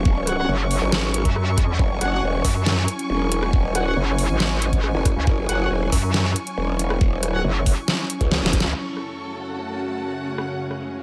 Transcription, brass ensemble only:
0.27 0.37 F#4 medium
0.27 0.37 C#5 medium
0.27 0.37 F#5 medium
0.38 0.49 F#4 medium
0.38 0.49 C#5 medium
0.38 0.49 F#5 loud
2.01 2.10 F#4 medium
2.01 2.10 C#5 medium
2.01 2.10 F#5 loud
2.12 2.23 F#4 loud
2.12 2.23 C#5 medium
2.12 2.23 F#5 loud
3.75 3.84 F#4 medium
3.75 3.84 C#5 medium
3.75 3.84 F#5 medium
3.86 3.97 F#4 medium
3.86 3.97 C#5 medium
3.86 3.97 F#5 loud
5.49 5.58 F#4 medium
5.49 5.58 C#5 medium
5.49 5.58 F#5 loud
5.60 5.70 F#4 medium
5.60 5.70 C#5 medium
5.60 5.70 F#5 loud
7.34 7.44 F#4 medium
7.34 7.44 C#5 medium
7.34 7.44 F#5 loud

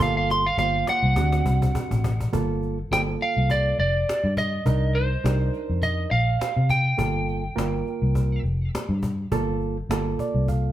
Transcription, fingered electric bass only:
0.00 0.49 G1 loud
0.57 0.82 G1 loud
1.03 1.14 C2 medium
1.16 1.41 D2 loud
1.45 1.70 C2 loud
1.91 2.26 A1 medium
2.33 2.82 G1 loud
2.91 3.16 G1 medium
3.37 3.72 C2 medium
3.79 4.03 F1 medium
4.24 4.59 G2 medium
4.65 5.15 C2 loud
5.24 5.49 C2 medium
5.70 6.05 F2 medium
6.11 6.36 A#1 medium
6.57 6.92 C3 medium
6.98 7.48 G1 loud
7.57 7.82 G1 medium
8.02 8.38 C2 medium
8.43 8.68 F1 medium
8.89 9.25 G2 medium
9.32 9.81 G1 loud
9.89 10.14 G1 medium
10.34 10.70 C2 medium

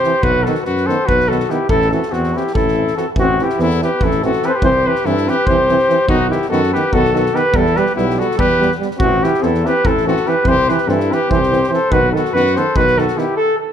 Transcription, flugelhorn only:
0.00 0.24 C5 loud
0.23 0.45 B4 loud
0.43 0.62 A4 medium
0.63 0.88 B4 medium
0.86 1.09 C5 loud
1.07 1.30 B4 loud
1.28 1.51 A4 medium
1.49 1.69 G4 medium
1.69 1.90 A4 loud
1.91 2.13 A4 medium
2.12 2.39 F#4 medium
2.37 2.54 G4 medium
2.54 2.93 A4 loud
2.98 3.06 A4 medium
3.19 3.44 F#4 loud
3.43 3.63 G4 medium
3.61 3.82 A4 medium
3.83 4.06 B4 medium
4.05 4.24 A4 loud
4.25 4.47 A4 medium
4.45 4.50 B4 loud
4.45 4.56 C5 medium
4.54 4.66 B4 medium
4.64 4.88 C5 loud
4.87 5.07 B4 loud
5.06 5.29 A4 medium
5.28 5.48 B4 loud
5.46 6.08 C5 loud
6.09 6.30 F#4 loud
6.31 6.49 G4 medium
6.49 6.71 A4 loud
6.73 6.95 B4 loud
6.93 7.15 A4 loud
7.17 7.37 A4 loud
7.36 7.57 B4 loud
7.56 7.78 A4 loud
7.77 7.95 B4 loud
7.96 8.21 G4 medium
8.20 8.39 A4 loud
8.40 8.72 B4 loud
8.99 9.25 F#4 loud
9.23 9.44 G4 loud
9.43 9.67 A4 medium
9.66 9.88 B4 loud
9.86 10.07 A4 loud
10.07 10.29 A4 medium
10.27 10.49 B4 loud
10.48 10.71 C5 loud
10.69 10.89 B4 loud
10.88 11.13 A4 medium
11.11 11.32 B4 medium
11.30 11.68 C5 loud
11.69 11.93 C5 loud
11.91 12.12 B4 loud
12.12 12.32 A4 medium
12.33 12.57 B4 loud
12.55 12.78 C5 loud
12.76 13.00 B4 loud
12.98 13.19 A4 loud
13.17 13.36 G4 medium
13.36 13.57 A4 loud
13.58 13.73 A4 medium

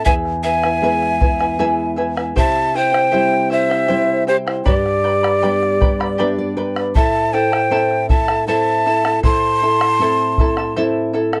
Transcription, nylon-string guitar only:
0.06 2.32 E2 medium
0.82 1.56 G#3 medium
0.82 1.57 B3 soft
0.82 1.57 E4 medium
1.59 2.33 G#3 soft
1.59 2.34 B3 soft
1.59 2.34 E4 medium
2.36 4.61 C3 medium
3.13 3.87 G3 soft
3.13 3.87 C4 soft
3.13 3.87 E4 medium
3.89 4.63 G3 medium
3.89 4.63 C4 soft
3.89 4.64 E4 medium
4.67 6.92 G2 medium
5.43 6.17 G3 soft
5.43 6.17 B3 soft
5.43 6.17 D4 medium
6.19 6.93 G3 medium
6.19 6.93 B3 soft
6.19 6.94 D4 medium
6.19 6.37 E5 medium
6.38 6.56 D5 medium
6.57 6.92 B4 medium
6.96 9.21 A2 medium
7.70 8.45 A3 medium
7.70 8.45 C4 soft
7.70 8.45 E4 medium
8.47 9.22 A3 soft
8.47 9.22 C4 soft
8.47 9.22 E4 medium
9.24 11.40 A2 medium
9.99 10.74 A3 soft
9.99 10.74 C4 soft
9.99 10.74 E4 medium
10.77 11.40 A3 medium
10.77 11.40 C4 soft
10.77 11.40 E4 medium

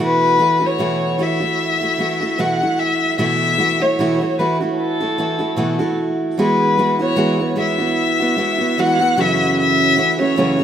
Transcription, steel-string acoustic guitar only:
0.00 0.39 B2 medium
0.00 0.38 E3 medium
0.00 0.38 A3 medium
0.00 0.40 E4 medium
0.00 0.40 F#4 medium
0.39 0.61 E3 soft
0.39 0.62 A3 soft
0.39 0.60 E4 medium
0.39 0.59 F#4 medium
0.60 0.78 A3 soft
0.60 0.79 E4 soft
0.60 0.79 F#4 soft
0.78 1.19 B2 medium
0.78 1.17 E3 medium
0.78 1.18 A3 medium
0.78 1.19 E4 medium
0.78 1.19 F#4 medium
1.19 1.41 E3 soft
1.19 1.41 A3 medium
1.19 1.41 E4 medium
1.19 1.39 F#4 medium
1.40 1.82 A3 soft
1.40 1.81 E4 soft
1.40 1.80 F#4 soft
1.81 1.98 A3 soft
1.81 1.99 E4 soft
1.81 1.99 F#4 soft
1.98 2.21 E3 medium
1.98 2.21 A3 medium
1.98 2.21 E4 medium
1.98 2.20 F#4 medium
2.21 2.38 A3 soft
2.21 2.38 E4 soft
2.21 2.39 F#4 soft
2.38 2.61 B2 medium
2.38 2.61 E3 medium
2.38 2.61 A3 medium
2.38 2.61 E4 medium
2.38 2.61 F#4 medium
2.62 3.18 A3 soft
2.62 3.18 E4 soft
2.62 3.19 F#4 soft
3.18 3.59 B2 medium
3.18 3.57 E3 medium
3.18 3.57 A3 medium
3.18 3.58 E4 medium
3.18 3.59 F#4 medium
3.58 3.80 E3 soft
3.58 3.81 A3 medium
3.58 3.80 E4 medium
3.58 3.79 F#4 medium
3.80 3.99 A3 soft
3.80 3.99 E4 soft
3.80 3.98 F#4 soft
3.99 4.21 B2 medium
3.99 4.21 E3 medium
3.99 4.21 A3 medium
3.99 4.21 E4 medium
3.99 4.20 F#4 medium
4.21 4.38 A3 soft
4.21 4.39 E4 soft
4.21 4.39 F#4 soft
4.39 4.61 E3 soft
4.39 4.61 A3 medium
4.39 4.61 E4 medium
4.39 4.59 F#4 medium
4.60 5.02 A3 soft
4.60 5.01 E4 soft
4.60 4.99 F#4 soft
5.00 5.17 A3 soft
5.00 5.18 E4 soft
5.00 5.19 F#4 medium
5.18 5.40 E3 soft
5.18 5.40 A3 medium
5.18 5.39 E4 medium
5.18 5.38 F#4 medium
5.39 5.56 A3 soft
5.39 5.56 E4 soft
5.39 5.57 F#4 soft
5.56 5.79 B2 medium
5.56 5.80 E3 medium
5.56 5.80 A3 medium
5.56 5.79 E4 medium
5.56 5.78 F#4 medium
5.79 6.38 A3 soft
5.79 6.38 E4 soft
5.79 6.38 F#4 medium
6.38 6.78 E3 medium
6.38 6.77 G#3 medium
6.38 6.78 B3 medium
6.38 6.78 E4 medium
6.38 6.78 F#4 medium
6.78 7.00 G#3 soft
6.78 7.00 B3 medium
6.78 6.99 E4 medium
6.78 6.98 F#4 medium
6.99 7.16 B3 soft
6.99 7.16 E4 soft
6.99 7.16 F#4 soft
7.16 7.39 E3 medium
7.16 7.39 G#3 medium
7.16 7.39 B3 medium
7.16 7.39 E4 medium
7.16 7.38 F#4 medium
7.39 7.55 B3 soft
7.39 7.56 E4 soft
7.39 7.57 F#4 soft
7.56 7.79 G#3 medium
7.56 7.79 B3 medium
7.56 7.79 E4 medium
7.56 7.77 F#4 medium
7.78 8.20 B3 soft
7.78 8.20 E4 soft
7.78 8.18 F#4 soft
8.20 8.37 B3 soft
8.20 8.37 E4 soft
8.20 8.38 F#4 soft
8.36 8.59 G#3 medium
8.36 8.60 B3 medium
8.36 8.59 E4 medium
8.36 8.57 F#4 medium
8.58 8.78 B3 soft
8.58 8.78 E4 soft
8.58 8.77 F#4 soft
8.78 9.00 E3 medium
8.78 9.00 G#3 medium
8.78 9.00 B3 medium
8.78 8.99 E4 medium
8.78 8.98 F#4 medium
8.99 9.18 B3 soft
8.99 9.18 E4 soft
8.99 9.17 F#4 soft
9.16 9.97 F#2 medium
9.16 9.97 C#3 medium
9.16 9.96 E3 medium
9.16 9.96 A3 medium
9.16 9.96 C#4 medium
9.16 9.98 F#4 medium
9.96 10.19 E3 medium
9.96 10.19 A3 soft
9.96 10.19 C#4 medium
9.96 10.17 F#4 medium
10.19 10.36 E3 soft
10.19 10.36 A3 soft
10.19 10.37 C#4 soft
10.19 10.37 F#4 soft
10.36 10.59 F#2 medium
10.36 10.59 C#3 medium
10.36 10.59 E3 medium
10.36 10.59 A3 medium
10.36 10.58 C#4 medium
10.36 10.57 F#4 medium
10.59 10.64 A3 soft
10.59 10.64 C#4 soft
10.59 10.64 F#4 soft

